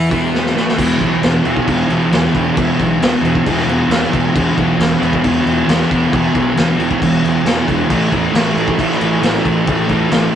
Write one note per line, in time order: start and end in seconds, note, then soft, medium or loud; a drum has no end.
0.00 0.10 E4 loud
0.09 0.53 E1 medium
0.09 0.54 E2 medium
0.09 0.55 E3 loud
0.09 kick loud
0.09 open hi-hat medium
0.35 snare medium
0.46 snare medium
0.54 0.77 A1 medium
0.54 0.77 A2 medium
0.54 0.78 A3 medium
0.54 snare medium
0.69 snare medium
0.76 0.92 E1 medium
0.76 1.21 E2 medium
0.76 1.01 B2 loud
0.76 kick loud
0.76 crash loud
0.76 crash medium
0.80 0.98 E3 medium
0.98 1.15 B1 medium
0.98 1.26 E3 medium
0.98 kick medium
0.98 crash medium
1.03 1.23 B2 medium
1.22 1.38 E1 loud
1.22 1.47 E2 medium
1.22 1.44 B2 medium
1.22 snare loud
1.22 crash medium
1.26 1.42 E3 medium
1.43 1.60 E1 medium
1.43 1.67 B2 medium
1.43 1.70 E3 medium
1.43 crash medium
1.47 1.65 E2 medium
1.57 kick medium
1.66 1.82 E1 medium
1.66 2.11 E2 medium
1.66 1.91 B2 medium
1.66 kick loud
1.66 crash medium
1.70 1.88 E3 medium
1.88 2.04 E1 medium
1.88 2.15 E3 medium
1.88 crash medium
1.93 2.12 B2 medium
2.11 2.26 E1 loud
2.11 2.55 E2 medium
2.11 2.36 B2 loud
2.11 snare loud
2.11 crash medium
2.15 2.33 E3 loud
2.24 snare soft
2.33 2.49 E1 medium
2.33 2.57 B2 medium
2.33 2.59 E3 medium
2.33 kick medium
2.33 crash medium
2.55 2.71 E1 medium
2.55 2.99 E2 medium
2.55 2.81 B2 loud
2.55 kick loud
2.55 crash medium
2.59 2.77 E3 loud
2.77 2.94 B1 medium
2.77 3.03 E3 medium
2.77 kick medium
2.77 crash medium
2.82 3.00 B2 medium
2.99 3.14 E1 medium
2.99 3.26 E2 medium
2.99 3.23 B2 medium
2.99 snare loud
2.99 crash medium
3.04 3.21 E3 medium
3.21 3.37 E1 medium
3.21 3.45 B2 medium
3.21 3.47 E3 loud
3.21 crash medium
3.26 3.43 E2 medium
3.35 kick medium
3.43 3.61 E1 medium
3.43 3.88 E2 medium
3.43 3.70 B2 medium
3.43 kick loud
3.43 crash medium
3.48 3.66 E3 medium
3.59 snare soft
3.67 3.81 E1 medium
3.67 3.92 E3 medium
3.67 crash medium
3.71 3.90 B2 medium
3.88 4.03 E1 loud
3.88 4.33 E2 loud
3.88 4.13 B2 loud
3.88 snare loud
3.88 crash medium
3.92 4.10 E3 loud
4.03 snare soft
4.10 4.27 E1 medium
4.10 4.37 E3 medium
4.10 kick medium
4.10 crash medium
4.14 4.34 B2 medium
4.33 4.50 E1 medium
4.33 4.77 E2 medium
4.33 4.59 B2 loud
4.33 kick loud
4.33 crash loud
4.37 4.55 E3 loud
4.55 4.72 B1 loud
4.55 4.81 E3 medium
4.55 kick medium
4.55 crash medium
4.60 4.78 B2 medium
4.77 4.93 E1 loud
4.77 5.03 E2 medium
4.77 5.00 B2 medium
4.77 crash medium
4.81 4.99 E3 medium
4.81 snare loud
4.99 5.16 E1 loud
4.99 5.23 B2 medium
4.99 5.26 E3 loud
4.99 crash medium
5.03 5.21 E2 medium
5.13 kick medium
5.22 5.38 E1 loud
5.22 5.65 E2 medium
5.22 5.47 B2 medium
5.22 kick loud
5.22 crash medium
5.26 5.44 E3 medium
5.44 5.60 E1 medium
5.44 5.70 E3 medium
5.44 crash medium
5.48 5.67 B2 medium
5.66 5.82 E1 medium
5.66 6.09 E2 loud
5.66 5.91 B2 loud
5.66 snare loud
5.66 crash medium
5.70 5.87 E3 loud
5.81 snare soft
5.87 6.05 E1 medium
5.87 6.14 E3 medium
5.87 kick medium
5.87 crash medium
5.92 6.11 B2 medium
6.10 6.27 E1 medium
6.10 6.53 E2 medium
6.10 6.36 B2 medium
6.10 kick loud
6.10 crash medium
6.15 6.33 E3 loud
6.33 6.49 B1 medium
6.33 6.59 E3 medium
6.33 kick medium
6.33 crash medium
6.37 6.56 B2 medium
6.54 6.72 E1 medium
6.54 6.80 E2 medium
6.54 6.78 B2 medium
6.54 snare loud
6.54 crash medium
6.59 6.76 E3 medium
6.77 6.94 E1 medium
6.77 7.00 B2 medium
6.77 7.03 E3 loud
6.77 crash medium
6.81 6.98 E2 medium
6.91 kick medium
6.99 7.16 E1 medium
6.99 7.42 E2 medium
6.99 7.26 B2 medium
6.99 kick loud
6.99 crash medium
7.04 7.22 E3 medium
7.22 7.37 E1 medium
7.22 7.47 E3 medium
7.22 crash medium
7.27 7.44 B2 medium
7.43 7.59 E1 medium
7.43 7.87 E2 medium
7.43 7.69 B2 loud
7.43 crash medium
7.47 7.65 E3 medium
7.47 snare loud
7.66 7.82 E1 medium
7.66 7.89 E3 medium
7.66 kick medium
7.66 crash medium
7.70 7.87 B2 medium
7.87 8.05 A1 medium
7.87 8.32 A2 medium
7.87 8.15 E3 loud
7.87 kick loud
7.87 crash medium
7.92 8.10 A3 loud
8.10 8.26 E2 medium
8.10 8.37 A3 medium
8.10 kick medium
8.10 crash medium
8.15 8.34 E3 medium
8.32 8.49 A1 loud
8.32 8.57 A2 medium
8.32 8.56 E3 medium
8.32 snare loud
8.32 crash medium
8.37 8.54 A3 medium
8.54 8.71 A1 loud
8.54 8.77 E3 medium
8.54 8.80 A3 medium
8.54 crash medium
8.59 8.74 A2 medium
8.68 kick medium
8.76 8.93 A1 loud
8.76 9.19 A2 medium
8.76 9.01 E3 medium
8.76 kick loud
8.76 crash medium
8.80 8.98 A3 medium
8.91 snare soft
8.98 9.15 A1 medium
8.98 9.24 A3 medium
8.98 crash medium
9.02 9.21 E3 medium
9.20 9.37 A1 loud
9.20 9.64 A2 medium
9.20 9.46 E3 loud
9.20 snare loud
9.20 crash medium
9.25 9.42 A3 loud
9.36 snare soft
9.42 9.59 A1 medium
9.42 9.69 A3 medium
9.42 kick medium
9.42 crash medium
9.47 9.67 E3 medium
9.65 9.82 A1 medium
9.65 10.08 A2 medium
9.65 9.91 E3 medium
9.65 kick loud
9.65 crash medium
9.70 9.88 A3 loud
9.88 10.04 E2 medium
9.88 10.13 A3 medium
9.88 kick medium
9.88 crash medium
9.92 10.10 E3 medium
10.09 10.26 A1 loud
10.09 10.35 A2 medium
10.09 10.33 E3 medium
10.09 snare loud
10.09 crash medium
10.13 10.31 A3 medium
10.32 10.35 A3 medium